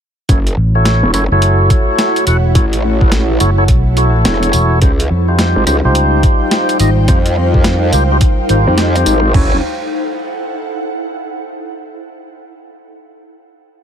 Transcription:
0.29 wobble bass F#1, analog synth pad A3 E4 F#4 C#5, tonewheel organ E4 F#4 A4 C#5, ambient pad E4, kick, closed hi-hat
0.47 closed hi-hat
0.57 fingered electric bass A1
0.75 tonewheel organ E4 F#4 A4 C#5
0.81 ambient pad A4 F#5
0.85 snare, closed hi-hat
1.03 wobble bass E1
1.13 wobble bass F#1, tonewheel organ E4 F#4 A4 C#5, cross-stick, closed hi-hat, tambourine
1.32 fingered electric bass F#1, tonewheel organ E4 F#4 A4 C#5
1.42 closed hi-hat
1.70 kick, closed hi-hat
1.99 snare, closed hi-hat
2.16 closed hi-hat
2.27 fingered electric bass E1, tonewheel organ E4 F#4 A4 F#5, closed hi-hat, tambourine
2.55 wobble bass A1, tonewheel organ E4 F#4 A4 C#5, kick, closed hi-hat
2.73 closed hi-hat
3.01 tonewheel organ E4 F#4 A4 B4, kick
3.12 snare, closed hi-hat
3.40 fingered electric bass F#1, tonewheel organ E4 F#4 A4 C#5, closed hi-hat, tambourine
3.58 tonewheel organ E4 F#4 A4 C#5
3.68 fingered electric bass B1, kick, closed hi-hat
3.97 tonewheel organ E4 F#4 A4 C#5, closed hi-hat
4.25 wobble bass E1, snare, closed hi-hat
4.34 cross-stick
4.43 closed hi-hat
4.53 fingered electric bass E1, closed hi-hat, tambourine
4.82 wobble bass C#2, analog synth pad G3 D#4 F4 C5, tonewheel organ D#4 F4 G4 C5, ambient pad D#4, kick, closed hi-hat
4.99 ambient pad C5, closed hi-hat
5.08 fingered electric bass F2, ambient pad G5
5.28 tonewheel organ D#4 F4 G4 C5
5.39 snare, closed hi-hat
5.54 wobble bass G#1, ambient pad F5
5.67 wobble bass C#2, tonewheel organ D#4 F4 G4 C5, cross-stick, closed hi-hat, tambourine
5.85 fingered electric bass C#2, tonewheel organ D#4 F4 G4 C5
5.95 closed hi-hat
6.23 kick, closed hi-hat
6.51 snare, closed hi-hat
6.69 closed hi-hat
6.79 fingered electric bass G#1, tonewheel organ D#4 F4 G4 D#5, closed hi-hat, tambourine
7.08 wobble bass F2, tonewheel organ D#4 F4 G4 C5, analog synth pad A#4, kick, closed hi-hat
7.26 closed hi-hat
7.54 tonewheel organ D#4 F4 G4 A#4, kick
7.64 snare, closed hi-hat
7.93 fingered electric bass C#2, tonewheel organ D#4 F4 G4 C5, closed hi-hat, tambourine
8.12 tonewheel organ D#4 F4 G4 C5
8.21 kick, closed hi-hat
8.49 fingered electric bass G#1, tonewheel organ D#4 F4 G4 C5, closed hi-hat
8.67 wobble bass F2
8.78 snare, closed hi-hat
8.96 cross-stick, closed hi-hat
9.06 wobble bass G#1, closed hi-hat, tambourine
9.34 wobble bass F#1, tonewheel organ E4 F#4 A4 C#5, ambient pad E4, kick, floor tom, crash
9.45 ambient pad A4
9.55 ambient pad F#5

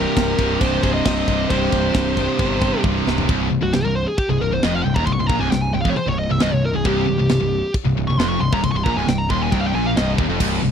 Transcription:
Already playing: distorted electric guitar C2 G2 C3, lead electric guitar G4 A#4
0.17 picked electric bass C1, kick, snare, crash
0.37 picked electric bass C1, distorted electric guitar G2 C3, kick, crash
0.41 distorted electric guitar C2
0.59 picked electric bass C1, distorted electric guitar C2 G2 C3, lead electric guitar G4 C5, kick, crash
0.83 picked electric bass C1, lead electric guitar G#4 C5, kick, crash
0.93 lead electric guitar C5 D#5
1.04 picked electric bass C1, distorted electric guitar C2 G2, lead electric guitar C5 D#5, kick, snare, crash
1.08 distorted electric guitar C3
1.27 picked electric bass C1, kick, crash
1.50 picked electric bass C1, distorted electric guitar C2 G2, lead electric guitar G4 C5, kick, crash
1.54 distorted electric guitar C3
1.72 picked electric bass C1, kick, crash
1.94 picked electric bass C1, kick, snare, crash
2.17 distorted electric guitar G2 C3, kick, crash
2.21 distorted electric guitar C2
2.38 picked electric bass G1, distorted electric guitar C2 G2 C3, kick, crash
2.61 kick, crash
2.83 picked electric bass C1, distorted electric guitar C2 G2, kick, high tom
2.88 distorted electric guitar C3
3.07 picked electric bass C1, snare
3.18 floor tom
3.28 picked electric bass C1, distorted electric guitar C2, kick, china
3.51 picked electric bass C1, distorted electric guitar C2
3.62 picked electric bass C1, distorted electric guitar C2, lead electric guitar F#4
3.73 picked electric bass C1, distorted electric guitar C2, lead electric guitar G4, snare, china
3.84 picked electric bass C1, distorted electric guitar C2, lead electric guitar A#4
3.95 lead electric guitar C5
4.07 lead electric guitar G#4
4.18 lead electric guitar G4, kick, china
4.29 picked electric bass C1, distorted electric guitar C2, lead electric guitar G#4
4.41 picked electric bass C1, distorted electric guitar C2, lead electric guitar A#4
4.52 picked electric bass C1, distorted electric guitar C2, lead electric guitar C5
4.62 picked electric bass F1, distorted electric guitar F2, lead electric guitar D#5, snare, china
4.75 lead electric guitar F5
4.84 picked electric bass C1, distorted electric guitar C2, lead electric guitar G5
4.94 picked electric bass D#1, lead electric guitar A#5, kick
4.99 distorted electric guitar D#2
5.06 picked electric bass C1, lead electric guitar C6, kick, china
5.10 distorted electric guitar C2, lead electric guitar C#6
5.18 picked electric bass C1, distorted electric guitar C2, lead electric guitar C6
5.28 picked electric bass A#1, distorted electric guitar A#2, lead electric guitar A#5, kick
5.39 picked electric bass C1, distorted electric guitar C2, lead electric guitar G#5
5.51 picked electric bass C1, distorted electric guitar C2, lead electric guitar G5, snare, china
5.62 lead electric guitar G#5
5.73 picked electric bass C1, distorted electric guitar C2, lead electric guitar G5
5.81 picked electric bass F1, lead electric guitar F5, kick
5.86 distorted electric guitar F2, lead electric guitar C#5
5.96 lead electric guitar C5, muted picked electric bass stroke, muted distorted electric guitar stroke, china
6.07 picked electric bass C1, distorted electric guitar C2, lead electric guitar C#5
6.19 lead electric guitar D#5
6.30 picked electric bass C1, distorted electric guitar C2, lead electric guitar E5
6.40 picked electric bass C1, distorted electric guitar C2, lead electric guitar D#5, snare, china
6.52 picked electric bass C1, distorted electric guitar C2, lead electric guitar C#5
6.65 lead electric guitar A#4
6.75 picked electric bass C1, distorted electric guitar C2, lead electric guitar G#4
6.84 picked electric bass C1, distorted electric guitar C2, lead electric guitar G4, kick, china
7.08 picked electric bass C1, distorted electric guitar C2
7.18 picked electric bass C1, distorted electric guitar C2
7.29 picked electric bass C1, distorted electric guitar C2, snare, china
7.41 picked electric bass C1, distorted electric guitar C2
7.74 kick, china
7.84 picked electric bass C1, distorted electric guitar C2
7.96 picked electric bass C1, distorted electric guitar C2
8.07 picked electric bass C1, distorted electric guitar C2, lead electric guitar C#6
8.18 picked electric bass F1, distorted electric guitar F2, lead electric guitar C6, snare, china
8.29 lead electric guitar C#6
8.40 picked electric bass C1, distorted electric guitar C2, lead electric guitar C6
8.53 picked electric bass D#1, distorted electric guitar D#2, lead electric guitar A#5, kick
8.63 picked electric bass C1, distorted electric guitar C2, lead electric guitar C6, kick, china
8.72 picked electric bass C1, distorted electric guitar C2, lead electric guitar C#6
8.77 lead electric guitar C6
8.84 picked electric bass A#1, distorted electric guitar A#2, lead electric guitar A#5, kick
8.95 picked electric bass C1, distorted electric guitar C2, lead electric guitar G#5
9.07 picked electric bass C1, distorted electric guitar C2, lead electric guitar G5, snare, china
9.18 lead electric guitar A#5
9.30 picked electric bass D#1, distorted electric guitar D#2, lead electric guitar C6, kick
9.42 lead electric guitar G#5
9.51 picked electric bass C1, distorted electric guitar C2, lead electric guitar G5, kick, china
9.61 lead electric guitar F5
9.67 lead electric guitar G5
9.74 picked electric bass A#1, distorted electric guitar A#2, lead electric guitar G#5
9.86 lead electric guitar F5
9.95 picked electric bass C1, distorted electric guitar C2, lead electric guitar D#5, snare, china
10.18 picked electric bass D#1, distorted electric guitar D#2, kick
10.29 picked electric bass F1, distorted electric guitar F2
10.40 picked electric bass C1, distorted electric guitar C2, kick, crash, china
10.62 picked electric bass C1, distorted electric guitar C2

